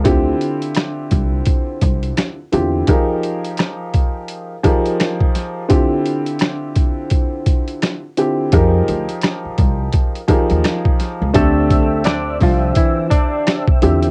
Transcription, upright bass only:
X:1
M:4/4
L:1/16
Q:"Swing 16ths" 1/4=85
K:Dm
V:1 name="Upright bass" clef=bass
D,,2 z4 C,,2 z2 C,,2 z2 E,,2 | z16 | z16 | F,,2 D,, z3 C,,2 z3 _E,, z3 ^C,, |
D,,6 C,,2 z6 E,,2 |]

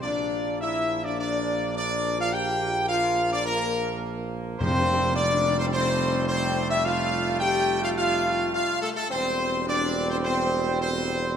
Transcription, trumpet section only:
X:1
M:4/4
L:1/16
Q:1/4=106
K:F
V:1 name="Trumpet section"
d4 e3 d d4 d3 f | g4 f3 d B4 z4 | c4 d3 c c4 c3 e | f4 g3 f f4 f2 A A |
c4 d3 c c4 c4 |]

